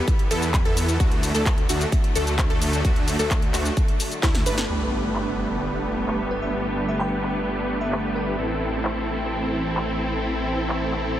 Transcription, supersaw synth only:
0, 0, Header, 1, 2, 480
1, 0, Start_track
1, 0, Key_signature, 1, "major"
1, 0, Tempo, 461538
1, 1041, Time_signature, 4, 2, 24, 8
1, 11646, End_track
2, 0, Start_track
2, 0, Title_t, "Supersaw synth"
2, 0, Program_c, 0, 81
2, 320, Note_on_c, 0, 64, 87
2, 320, Note_on_c, 0, 69, 110
2, 321, Note_on_c, 0, 59, 97
2, 508, Note_off_c, 0, 59, 0
2, 508, Note_off_c, 0, 64, 0
2, 508, Note_off_c, 0, 69, 0
2, 681, Note_on_c, 0, 64, 82
2, 681, Note_on_c, 0, 69, 95
2, 682, Note_on_c, 0, 59, 88
2, 1012, Note_off_c, 0, 59, 0
2, 1012, Note_off_c, 0, 64, 0
2, 1012, Note_off_c, 0, 69, 0
2, 1041, Note_on_c, 0, 57, 88
2, 1041, Note_on_c, 0, 62, 84
2, 1041, Note_on_c, 0, 66, 99
2, 1372, Note_off_c, 0, 57, 0
2, 1372, Note_off_c, 0, 62, 0
2, 1372, Note_off_c, 0, 66, 0
2, 1401, Note_on_c, 0, 69, 88
2, 1402, Note_on_c, 0, 57, 80
2, 1402, Note_on_c, 0, 62, 76
2, 1588, Note_off_c, 0, 69, 0
2, 1589, Note_off_c, 0, 57, 0
2, 1589, Note_off_c, 0, 62, 0
2, 1761, Note_on_c, 0, 57, 83
2, 1761, Note_on_c, 0, 62, 75
2, 1761, Note_on_c, 0, 66, 94
2, 1948, Note_off_c, 0, 57, 0
2, 1948, Note_off_c, 0, 62, 0
2, 1948, Note_off_c, 0, 66, 0
2, 2241, Note_on_c, 0, 57, 98
2, 2241, Note_on_c, 0, 62, 88
2, 2241, Note_on_c, 0, 69, 108
2, 2428, Note_off_c, 0, 57, 0
2, 2428, Note_off_c, 0, 62, 0
2, 2428, Note_off_c, 0, 69, 0
2, 2601, Note_on_c, 0, 57, 88
2, 2601, Note_on_c, 0, 62, 83
2, 2601, Note_on_c, 0, 69, 94
2, 2932, Note_off_c, 0, 57, 0
2, 2932, Note_off_c, 0, 62, 0
2, 2932, Note_off_c, 0, 69, 0
2, 2961, Note_on_c, 0, 57, 91
2, 2961, Note_on_c, 0, 62, 86
2, 2961, Note_on_c, 0, 66, 99
2, 3292, Note_off_c, 0, 57, 0
2, 3292, Note_off_c, 0, 62, 0
2, 3292, Note_off_c, 0, 66, 0
2, 3320, Note_on_c, 0, 62, 74
2, 3321, Note_on_c, 0, 57, 83
2, 3321, Note_on_c, 0, 69, 91
2, 3508, Note_off_c, 0, 57, 0
2, 3508, Note_off_c, 0, 62, 0
2, 3508, Note_off_c, 0, 69, 0
2, 3681, Note_on_c, 0, 57, 82
2, 3681, Note_on_c, 0, 62, 73
2, 3681, Note_on_c, 0, 66, 92
2, 3868, Note_off_c, 0, 57, 0
2, 3868, Note_off_c, 0, 62, 0
2, 3868, Note_off_c, 0, 66, 0
2, 4402, Note_on_c, 0, 57, 102
2, 4402, Note_on_c, 0, 62, 88
2, 4402, Note_on_c, 0, 64, 112
2, 4589, Note_off_c, 0, 57, 0
2, 4589, Note_off_c, 0, 62, 0
2, 4589, Note_off_c, 0, 64, 0
2, 4640, Note_on_c, 0, 57, 97
2, 4641, Note_on_c, 0, 62, 90
2, 4641, Note_on_c, 0, 71, 110
2, 4828, Note_off_c, 0, 57, 0
2, 4828, Note_off_c, 0, 62, 0
2, 4828, Note_off_c, 0, 71, 0
2, 4881, Note_on_c, 0, 57, 73
2, 4881, Note_on_c, 0, 62, 66
2, 4881, Note_on_c, 0, 67, 67
2, 4881, Note_on_c, 0, 71, 81
2, 4882, Note_on_c, 0, 59, 65
2, 8692, Note_off_c, 0, 57, 0
2, 8692, Note_off_c, 0, 59, 0
2, 8692, Note_off_c, 0, 62, 0
2, 8692, Note_off_c, 0, 67, 0
2, 8692, Note_off_c, 0, 71, 0
2, 8722, Note_on_c, 0, 60, 74
2, 8722, Note_on_c, 0, 64, 71
2, 8722, Note_on_c, 0, 69, 84
2, 11646, Note_off_c, 0, 60, 0
2, 11646, Note_off_c, 0, 64, 0
2, 11646, Note_off_c, 0, 69, 0
2, 11646, End_track
0, 0, End_of_file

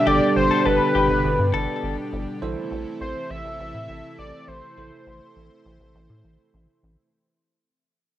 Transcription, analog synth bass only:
0, 0, Header, 1, 2, 480
1, 0, Start_track
1, 0, Key_signature, 0, "minor"
1, 0, Tempo, 588235
1, 55, Time_signature, 4, 2, 24, 8
1, 6677, End_track
2, 0, Start_track
2, 0, Title_t, "Analog synth bass"
2, 0, Program_c, 0, 38
2, 55, Note_on_c, 0, 31, 112
2, 164, Note_off_c, 0, 31, 0
2, 296, Note_on_c, 0, 31, 100
2, 404, Note_off_c, 0, 31, 0
2, 536, Note_on_c, 0, 31, 116
2, 644, Note_off_c, 0, 31, 0
2, 776, Note_on_c, 0, 31, 112
2, 884, Note_off_c, 0, 31, 0
2, 895, Note_on_c, 0, 31, 101
2, 1004, Note_off_c, 0, 31, 0
2, 1015, Note_on_c, 0, 31, 119
2, 1124, Note_off_c, 0, 31, 0
2, 1135, Note_on_c, 0, 43, 101
2, 1244, Note_off_c, 0, 43, 0
2, 1256, Note_on_c, 0, 31, 110
2, 1364, Note_off_c, 0, 31, 0
2, 1495, Note_on_c, 0, 31, 100
2, 1604, Note_off_c, 0, 31, 0
2, 1735, Note_on_c, 0, 31, 107
2, 1844, Note_off_c, 0, 31, 0
2, 1975, Note_on_c, 0, 33, 107
2, 2084, Note_off_c, 0, 33, 0
2, 2215, Note_on_c, 0, 33, 108
2, 2323, Note_off_c, 0, 33, 0
2, 2455, Note_on_c, 0, 33, 109
2, 2563, Note_off_c, 0, 33, 0
2, 2695, Note_on_c, 0, 33, 112
2, 2804, Note_off_c, 0, 33, 0
2, 2815, Note_on_c, 0, 33, 103
2, 2923, Note_off_c, 0, 33, 0
2, 2935, Note_on_c, 0, 33, 107
2, 3043, Note_off_c, 0, 33, 0
2, 3055, Note_on_c, 0, 45, 98
2, 3164, Note_off_c, 0, 45, 0
2, 3175, Note_on_c, 0, 33, 104
2, 3284, Note_off_c, 0, 33, 0
2, 3415, Note_on_c, 0, 33, 102
2, 3524, Note_off_c, 0, 33, 0
2, 3655, Note_on_c, 0, 33, 107
2, 3763, Note_off_c, 0, 33, 0
2, 3895, Note_on_c, 0, 33, 108
2, 4003, Note_off_c, 0, 33, 0
2, 4134, Note_on_c, 0, 33, 109
2, 4243, Note_off_c, 0, 33, 0
2, 4374, Note_on_c, 0, 33, 109
2, 4483, Note_off_c, 0, 33, 0
2, 4615, Note_on_c, 0, 33, 111
2, 4723, Note_off_c, 0, 33, 0
2, 4735, Note_on_c, 0, 33, 99
2, 4843, Note_off_c, 0, 33, 0
2, 4855, Note_on_c, 0, 33, 110
2, 4963, Note_off_c, 0, 33, 0
2, 4975, Note_on_c, 0, 45, 98
2, 5083, Note_off_c, 0, 45, 0
2, 5095, Note_on_c, 0, 33, 98
2, 5203, Note_off_c, 0, 33, 0
2, 5335, Note_on_c, 0, 33, 105
2, 5443, Note_off_c, 0, 33, 0
2, 5575, Note_on_c, 0, 33, 101
2, 5683, Note_off_c, 0, 33, 0
2, 6677, End_track
0, 0, End_of_file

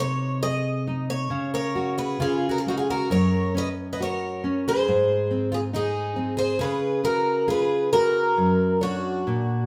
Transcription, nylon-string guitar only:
0, 0, Header, 1, 2, 480
1, 0, Start_track
1, 0, Key_signature, 6, "major"
1, 0, Tempo, 892857
1, 703, Time_signature, 2, 2, 24, 8
1, 2149, Tempo, 868307
1, 4069, Tempo, 896861
1, 5241, End_track
2, 0, Start_track
2, 0, Title_t, "Nylon-string guitar"
2, 0, Program_c, 0, 24
2, 0, Note_on_c, 0, 48, 62
2, 0, Note_on_c, 0, 63, 57
2, 221, Note_off_c, 0, 63, 0
2, 230, Note_on_c, 0, 68, 57
2, 460, Note_off_c, 0, 68, 0
2, 470, Note_on_c, 0, 63, 51
2, 682, Note_off_c, 0, 48, 0
2, 698, Note_off_c, 0, 63, 0
2, 699, Note_on_c, 0, 49, 63
2, 943, Note_on_c, 0, 66, 54
2, 1165, Note_off_c, 0, 49, 0
2, 1175, Note_off_c, 0, 66, 0
2, 1183, Note_on_c, 0, 49, 63
2, 1431, Note_on_c, 0, 56, 48
2, 1655, Note_off_c, 0, 49, 0
2, 1664, Note_off_c, 0, 56, 0
2, 1666, Note_on_c, 0, 42, 56
2, 1906, Note_on_c, 0, 61, 53
2, 2140, Note_off_c, 0, 61, 0
2, 2153, Note_on_c, 0, 66, 54
2, 2387, Note_off_c, 0, 66, 0
2, 2392, Note_on_c, 0, 61, 51
2, 2611, Note_off_c, 0, 42, 0
2, 2626, Note_off_c, 0, 61, 0
2, 2638, Note_on_c, 0, 44, 59
2, 2873, Note_on_c, 0, 60, 55
2, 3102, Note_off_c, 0, 60, 0
2, 3109, Note_on_c, 0, 63, 57
2, 3339, Note_off_c, 0, 63, 0
2, 3345, Note_on_c, 0, 60, 51
2, 3565, Note_off_c, 0, 44, 0
2, 3577, Note_off_c, 0, 60, 0
2, 3589, Note_on_c, 0, 49, 57
2, 3828, Note_on_c, 0, 68, 53
2, 4064, Note_off_c, 0, 68, 0
2, 4075, Note_on_c, 0, 65, 59
2, 4304, Note_off_c, 0, 65, 0
2, 4314, Note_on_c, 0, 68, 52
2, 4527, Note_off_c, 0, 49, 0
2, 4542, Note_off_c, 0, 68, 0
2, 4551, Note_on_c, 0, 42, 57
2, 4787, Note_on_c, 0, 73, 54
2, 5015, Note_off_c, 0, 42, 0
2, 5021, Note_off_c, 0, 73, 0
2, 5032, Note_on_c, 0, 46, 61
2, 5241, Note_off_c, 0, 46, 0
2, 5241, End_track
0, 0, End_of_file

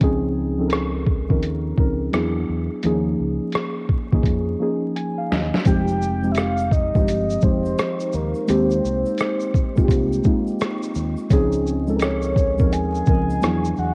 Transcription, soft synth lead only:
0, 0, Header, 1, 2, 480
1, 0, Start_track
1, 0, Key_signature, -4, "minor"
1, 0, Tempo, 705882
1, 8, Time_signature, 4, 2, 24, 8
1, 9480, End_track
2, 0, Start_track
2, 0, Title_t, "Soft synth lead"
2, 0, Program_c, 0, 80
2, 3852, Note_on_c, 0, 79, 115
2, 4296, Note_on_c, 0, 76, 81
2, 4306, Note_off_c, 0, 79, 0
2, 4336, Note_on_c, 0, 77, 101
2, 4346, Note_off_c, 0, 76, 0
2, 4571, Note_on_c, 0, 75, 97
2, 4582, Note_off_c, 0, 77, 0
2, 5056, Note_on_c, 0, 72, 111
2, 5067, Note_off_c, 0, 75, 0
2, 5541, Note_on_c, 0, 70, 91
2, 5551, Note_off_c, 0, 72, 0
2, 5779, Note_on_c, 0, 72, 95
2, 5789, Note_off_c, 0, 70, 0
2, 7214, Note_off_c, 0, 72, 0
2, 8174, Note_on_c, 0, 73, 101
2, 8651, Note_on_c, 0, 80, 118
2, 8661, Note_off_c, 0, 73, 0
2, 9374, Note_on_c, 0, 78, 101
2, 9385, Note_off_c, 0, 80, 0
2, 9480, Note_off_c, 0, 78, 0
2, 9480, End_track
0, 0, End_of_file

